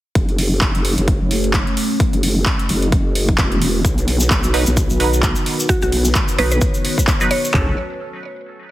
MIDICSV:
0, 0, Header, 1, 6, 480
1, 0, Start_track
1, 0, Tempo, 461538
1, 160, Time_signature, 4, 2, 24, 8
1, 9062, End_track
2, 0, Start_track
2, 0, Title_t, "Synth pluck"
2, 0, Program_c, 0, 84
2, 5918, Note_on_c, 0, 66, 96
2, 6007, Note_off_c, 0, 66, 0
2, 6058, Note_on_c, 0, 66, 75
2, 6123, Note_off_c, 0, 66, 0
2, 6640, Note_on_c, 0, 71, 92
2, 6728, Note_off_c, 0, 71, 0
2, 6777, Note_on_c, 0, 71, 77
2, 6843, Note_off_c, 0, 71, 0
2, 7599, Note_on_c, 0, 73, 94
2, 7840, Note_off_c, 0, 73, 0
2, 9062, End_track
3, 0, Start_track
3, 0, Title_t, "Analog synth pad"
3, 0, Program_c, 1, 89
3, 159, Note_on_c, 1, 57, 85
3, 159, Note_on_c, 1, 61, 78
3, 159, Note_on_c, 1, 66, 82
3, 159, Note_on_c, 1, 73, 96
3, 2060, Note_off_c, 1, 73, 0
3, 2082, Note_on_c, 1, 75, 95
3, 3961, Note_off_c, 1, 57, 0
3, 3961, Note_off_c, 1, 61, 0
3, 3982, Note_off_c, 1, 75, 0
3, 4000, Note_on_c, 1, 59, 77
3, 4001, Note_on_c, 1, 51, 81
3, 4001, Note_on_c, 1, 71, 95
3, 5901, Note_off_c, 1, 71, 0
3, 5919, Note_on_c, 1, 73, 94
3, 7798, Note_off_c, 1, 66, 0
3, 7801, Note_off_c, 1, 59, 0
3, 7802, Note_off_c, 1, 51, 0
3, 7820, Note_off_c, 1, 73, 0
3, 9062, End_track
4, 0, Start_track
4, 0, Title_t, "Synth stab"
4, 0, Program_c, 2, 62
4, 4719, Note_on_c, 2, 63, 78
4, 4720, Note_on_c, 2, 54, 85
4, 4720, Note_on_c, 2, 71, 91
4, 4799, Note_off_c, 2, 54, 0
4, 4799, Note_off_c, 2, 63, 0
4, 4799, Note_off_c, 2, 71, 0
4, 5199, Note_on_c, 2, 54, 82
4, 5199, Note_on_c, 2, 63, 75
4, 5199, Note_on_c, 2, 71, 93
4, 5279, Note_off_c, 2, 54, 0
4, 5279, Note_off_c, 2, 63, 0
4, 5279, Note_off_c, 2, 71, 0
4, 6639, Note_on_c, 2, 54, 94
4, 6639, Note_on_c, 2, 63, 85
4, 6640, Note_on_c, 2, 71, 103
4, 6719, Note_off_c, 2, 54, 0
4, 6719, Note_off_c, 2, 63, 0
4, 6719, Note_off_c, 2, 71, 0
4, 7497, Note_on_c, 2, 54, 93
4, 7497, Note_on_c, 2, 63, 85
4, 7497, Note_on_c, 2, 71, 107
4, 7556, Note_off_c, 2, 54, 0
4, 7556, Note_off_c, 2, 63, 0
4, 7556, Note_off_c, 2, 71, 0
4, 7840, Note_on_c, 2, 54, 86
4, 7840, Note_on_c, 2, 61, 83
4, 7840, Note_on_c, 2, 69, 93
4, 8025, Note_off_c, 2, 54, 0
4, 8025, Note_off_c, 2, 61, 0
4, 8025, Note_off_c, 2, 69, 0
4, 9062, End_track
5, 0, Start_track
5, 0, Title_t, "Wobble bass"
5, 0, Program_c, 3, 39
5, 160, Note_on_c, 3, 30, 99
5, 623, Note_off_c, 3, 30, 0
5, 640, Note_on_c, 3, 30, 91
5, 755, Note_off_c, 3, 30, 0
5, 777, Note_on_c, 3, 30, 96
5, 995, Note_off_c, 3, 30, 0
5, 1017, Note_on_c, 3, 30, 91
5, 1235, Note_off_c, 3, 30, 0
5, 1257, Note_on_c, 3, 30, 99
5, 1715, Note_off_c, 3, 30, 0
5, 2217, Note_on_c, 3, 30, 104
5, 2543, Note_off_c, 3, 30, 0
5, 2800, Note_on_c, 3, 30, 99
5, 3023, Note_off_c, 3, 30, 0
5, 3040, Note_on_c, 3, 30, 94
5, 3504, Note_off_c, 3, 30, 0
5, 3520, Note_on_c, 3, 28, 96
5, 3983, Note_off_c, 3, 28, 0
5, 4000, Note_on_c, 3, 35, 95
5, 4463, Note_off_c, 3, 35, 0
5, 4480, Note_on_c, 3, 35, 92
5, 4595, Note_off_c, 3, 35, 0
5, 4617, Note_on_c, 3, 35, 99
5, 4835, Note_off_c, 3, 35, 0
5, 4858, Note_on_c, 3, 35, 92
5, 5075, Note_off_c, 3, 35, 0
5, 5097, Note_on_c, 3, 35, 103
5, 5555, Note_off_c, 3, 35, 0
5, 6057, Note_on_c, 3, 35, 102
5, 6383, Note_off_c, 3, 35, 0
5, 6639, Note_on_c, 3, 35, 98
5, 6863, Note_off_c, 3, 35, 0
5, 7840, Note_on_c, 3, 30, 93
5, 8063, Note_off_c, 3, 30, 0
5, 9062, End_track
6, 0, Start_track
6, 0, Title_t, "Drums"
6, 160, Note_on_c, 9, 36, 120
6, 160, Note_on_c, 9, 42, 91
6, 264, Note_off_c, 9, 36, 0
6, 264, Note_off_c, 9, 42, 0
6, 298, Note_on_c, 9, 42, 39
6, 400, Note_on_c, 9, 46, 109
6, 402, Note_off_c, 9, 42, 0
6, 504, Note_off_c, 9, 46, 0
6, 636, Note_on_c, 9, 39, 127
6, 640, Note_on_c, 9, 36, 122
6, 640, Note_on_c, 9, 42, 86
6, 740, Note_off_c, 9, 39, 0
6, 744, Note_off_c, 9, 36, 0
6, 744, Note_off_c, 9, 42, 0
6, 778, Note_on_c, 9, 42, 53
6, 881, Note_on_c, 9, 46, 110
6, 882, Note_off_c, 9, 42, 0
6, 985, Note_off_c, 9, 46, 0
6, 1018, Note_on_c, 9, 42, 56
6, 1120, Note_off_c, 9, 42, 0
6, 1120, Note_on_c, 9, 36, 126
6, 1120, Note_on_c, 9, 42, 87
6, 1224, Note_off_c, 9, 36, 0
6, 1224, Note_off_c, 9, 42, 0
6, 1361, Note_on_c, 9, 46, 100
6, 1465, Note_off_c, 9, 46, 0
6, 1498, Note_on_c, 9, 42, 38
6, 1596, Note_on_c, 9, 39, 127
6, 1600, Note_on_c, 9, 36, 119
6, 1601, Note_off_c, 9, 42, 0
6, 1601, Note_on_c, 9, 42, 80
6, 1700, Note_off_c, 9, 39, 0
6, 1704, Note_off_c, 9, 36, 0
6, 1705, Note_off_c, 9, 42, 0
6, 1738, Note_on_c, 9, 42, 38
6, 1840, Note_on_c, 9, 46, 110
6, 1842, Note_off_c, 9, 42, 0
6, 1944, Note_off_c, 9, 46, 0
6, 2080, Note_on_c, 9, 36, 118
6, 2080, Note_on_c, 9, 42, 85
6, 2184, Note_off_c, 9, 36, 0
6, 2184, Note_off_c, 9, 42, 0
6, 2218, Note_on_c, 9, 42, 39
6, 2320, Note_on_c, 9, 46, 113
6, 2322, Note_off_c, 9, 42, 0
6, 2424, Note_off_c, 9, 46, 0
6, 2555, Note_on_c, 9, 39, 127
6, 2560, Note_on_c, 9, 36, 125
6, 2560, Note_on_c, 9, 42, 84
6, 2659, Note_off_c, 9, 39, 0
6, 2664, Note_off_c, 9, 36, 0
6, 2664, Note_off_c, 9, 42, 0
6, 2697, Note_on_c, 9, 42, 52
6, 2800, Note_on_c, 9, 46, 121
6, 2801, Note_off_c, 9, 42, 0
6, 2904, Note_off_c, 9, 46, 0
6, 2937, Note_on_c, 9, 42, 57
6, 3040, Note_off_c, 9, 42, 0
6, 3040, Note_on_c, 9, 36, 127
6, 3040, Note_on_c, 9, 42, 81
6, 3144, Note_off_c, 9, 36, 0
6, 3144, Note_off_c, 9, 42, 0
6, 3280, Note_on_c, 9, 46, 110
6, 3384, Note_off_c, 9, 46, 0
6, 3417, Note_on_c, 9, 36, 66
6, 3515, Note_on_c, 9, 39, 127
6, 3520, Note_off_c, 9, 36, 0
6, 3520, Note_on_c, 9, 36, 116
6, 3520, Note_on_c, 9, 42, 81
6, 3619, Note_off_c, 9, 39, 0
6, 3624, Note_off_c, 9, 36, 0
6, 3624, Note_off_c, 9, 42, 0
6, 3658, Note_on_c, 9, 42, 36
6, 3760, Note_on_c, 9, 46, 112
6, 3762, Note_off_c, 9, 42, 0
6, 3864, Note_off_c, 9, 46, 0
6, 4000, Note_on_c, 9, 36, 122
6, 4000, Note_on_c, 9, 42, 83
6, 4006, Note_on_c, 9, 82, 72
6, 4104, Note_off_c, 9, 36, 0
6, 4104, Note_off_c, 9, 42, 0
6, 4110, Note_off_c, 9, 82, 0
6, 4138, Note_on_c, 9, 42, 37
6, 4141, Note_on_c, 9, 82, 45
6, 4240, Note_on_c, 9, 46, 111
6, 4242, Note_off_c, 9, 42, 0
6, 4245, Note_off_c, 9, 82, 0
6, 4344, Note_off_c, 9, 46, 0
6, 4369, Note_on_c, 9, 82, 89
6, 4473, Note_off_c, 9, 82, 0
6, 4475, Note_on_c, 9, 39, 124
6, 4480, Note_on_c, 9, 36, 127
6, 4480, Note_on_c, 9, 42, 78
6, 4485, Note_on_c, 9, 82, 64
6, 4579, Note_off_c, 9, 39, 0
6, 4584, Note_off_c, 9, 36, 0
6, 4584, Note_off_c, 9, 42, 0
6, 4589, Note_off_c, 9, 82, 0
6, 4612, Note_on_c, 9, 82, 40
6, 4617, Note_on_c, 9, 42, 50
6, 4716, Note_off_c, 9, 82, 0
6, 4720, Note_on_c, 9, 46, 119
6, 4721, Note_off_c, 9, 42, 0
6, 4824, Note_off_c, 9, 46, 0
6, 4850, Note_on_c, 9, 82, 87
6, 4858, Note_on_c, 9, 42, 53
6, 4954, Note_off_c, 9, 82, 0
6, 4960, Note_off_c, 9, 42, 0
6, 4960, Note_on_c, 9, 36, 127
6, 4960, Note_on_c, 9, 42, 82
6, 4960, Note_on_c, 9, 82, 76
6, 5064, Note_off_c, 9, 36, 0
6, 5064, Note_off_c, 9, 42, 0
6, 5064, Note_off_c, 9, 82, 0
6, 5093, Note_on_c, 9, 82, 41
6, 5197, Note_off_c, 9, 82, 0
6, 5200, Note_on_c, 9, 46, 107
6, 5304, Note_off_c, 9, 46, 0
6, 5337, Note_on_c, 9, 42, 36
6, 5340, Note_on_c, 9, 82, 80
6, 5436, Note_on_c, 9, 39, 127
6, 5440, Note_off_c, 9, 42, 0
6, 5440, Note_on_c, 9, 36, 124
6, 5440, Note_on_c, 9, 42, 82
6, 5442, Note_off_c, 9, 82, 0
6, 5442, Note_on_c, 9, 82, 71
6, 5540, Note_off_c, 9, 39, 0
6, 5544, Note_off_c, 9, 36, 0
6, 5544, Note_off_c, 9, 42, 0
6, 5546, Note_off_c, 9, 82, 0
6, 5568, Note_on_c, 9, 82, 45
6, 5577, Note_on_c, 9, 42, 36
6, 5672, Note_off_c, 9, 82, 0
6, 5680, Note_on_c, 9, 46, 114
6, 5681, Note_off_c, 9, 42, 0
6, 5784, Note_off_c, 9, 46, 0
6, 5821, Note_on_c, 9, 82, 95
6, 5918, Note_off_c, 9, 82, 0
6, 5918, Note_on_c, 9, 82, 64
6, 5920, Note_on_c, 9, 36, 121
6, 5921, Note_on_c, 9, 42, 80
6, 6022, Note_off_c, 9, 82, 0
6, 6024, Note_off_c, 9, 36, 0
6, 6025, Note_off_c, 9, 42, 0
6, 6052, Note_on_c, 9, 82, 40
6, 6058, Note_on_c, 9, 42, 36
6, 6156, Note_off_c, 9, 82, 0
6, 6161, Note_on_c, 9, 46, 112
6, 6162, Note_off_c, 9, 42, 0
6, 6265, Note_off_c, 9, 46, 0
6, 6289, Note_on_c, 9, 82, 80
6, 6393, Note_off_c, 9, 82, 0
6, 6395, Note_on_c, 9, 39, 119
6, 6397, Note_on_c, 9, 82, 64
6, 6400, Note_on_c, 9, 36, 127
6, 6400, Note_on_c, 9, 42, 77
6, 6499, Note_off_c, 9, 39, 0
6, 6501, Note_off_c, 9, 82, 0
6, 6504, Note_off_c, 9, 36, 0
6, 6504, Note_off_c, 9, 42, 0
6, 6535, Note_on_c, 9, 82, 38
6, 6538, Note_on_c, 9, 42, 48
6, 6639, Note_off_c, 9, 82, 0
6, 6640, Note_on_c, 9, 46, 115
6, 6642, Note_off_c, 9, 42, 0
6, 6744, Note_off_c, 9, 46, 0
6, 6774, Note_on_c, 9, 82, 78
6, 6777, Note_on_c, 9, 42, 56
6, 6876, Note_off_c, 9, 82, 0
6, 6876, Note_on_c, 9, 82, 67
6, 6880, Note_off_c, 9, 42, 0
6, 6880, Note_on_c, 9, 36, 127
6, 6880, Note_on_c, 9, 42, 80
6, 6980, Note_off_c, 9, 82, 0
6, 6984, Note_off_c, 9, 36, 0
6, 6984, Note_off_c, 9, 42, 0
6, 7011, Note_on_c, 9, 82, 41
6, 7115, Note_off_c, 9, 82, 0
6, 7120, Note_on_c, 9, 46, 107
6, 7224, Note_off_c, 9, 46, 0
6, 7257, Note_on_c, 9, 36, 65
6, 7257, Note_on_c, 9, 42, 37
6, 7267, Note_on_c, 9, 82, 88
6, 7355, Note_on_c, 9, 39, 118
6, 7360, Note_off_c, 9, 36, 0
6, 7360, Note_off_c, 9, 42, 0
6, 7360, Note_on_c, 9, 36, 125
6, 7360, Note_on_c, 9, 42, 79
6, 7364, Note_off_c, 9, 82, 0
6, 7364, Note_on_c, 9, 82, 69
6, 7459, Note_off_c, 9, 39, 0
6, 7464, Note_off_c, 9, 36, 0
6, 7464, Note_off_c, 9, 42, 0
6, 7468, Note_off_c, 9, 82, 0
6, 7495, Note_on_c, 9, 82, 42
6, 7498, Note_on_c, 9, 42, 35
6, 7599, Note_off_c, 9, 82, 0
6, 7600, Note_on_c, 9, 46, 116
6, 7602, Note_off_c, 9, 42, 0
6, 7704, Note_off_c, 9, 46, 0
6, 7744, Note_on_c, 9, 82, 80
6, 7840, Note_on_c, 9, 36, 100
6, 7840, Note_on_c, 9, 39, 88
6, 7840, Note_on_c, 9, 43, 98
6, 7848, Note_off_c, 9, 82, 0
6, 7944, Note_off_c, 9, 36, 0
6, 7944, Note_off_c, 9, 39, 0
6, 7944, Note_off_c, 9, 43, 0
6, 9062, End_track
0, 0, End_of_file